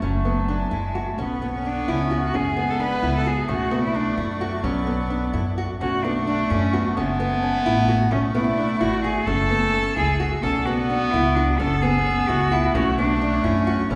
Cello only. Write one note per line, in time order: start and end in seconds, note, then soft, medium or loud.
0.04 0.76 F#3 medium
0.74 1.11 G#3 medium
1.09 1.19 A3 medium
1.20 1.52 B3 medium
1.55 1.68 C#4 medium
1.67 1.92 D4 medium
1.91 2.24 C#4 medium
2.24 2.37 F#4 medium
2.35 2.72 G#4 loud
2.70 2.81 A4 medium
2.82 3.13 B4 loud
3.16 3.29 A4 medium
3.27 3.49 G#4 medium
3.50 3.81 F#4 loud
3.84 3.97 E4 medium
3.96 4.18 D4 loud
4.18 4.65 A3 medium
4.63 5.57 B3 medium
5.81 6.06 F#4 medium
6.05 6.52 D4 medium
6.50 6.76 C#4 medium
6.74 6.91 B3 medium
6.90 6.99 A3 medium
6.97 7.67 G#3 medium
7.66 8.00 A3 loud
8.11 8.22 C#4 loud
8.34 8.82 E4 medium
8.81 9.03 F#4 loud
9.04 9.28 G#4 loud
9.26 9.96 A4 loud
9.96 10.29 G#4 loud
10.42 10.67 A4 loud
10.66 11.13 F#4 medium
11.12 11.36 E4 loud
11.35 11.60 D4 medium
11.58 11.84 A4 loud
11.82 12.30 G#4 loud
12.28 12.54 F#4 loud
12.52 12.77 E4 medium
12.75 12.98 F#4 loud
12.98 13.46 D4 medium
13.44 13.92 C#4 loud
13.91 13.95 B3 medium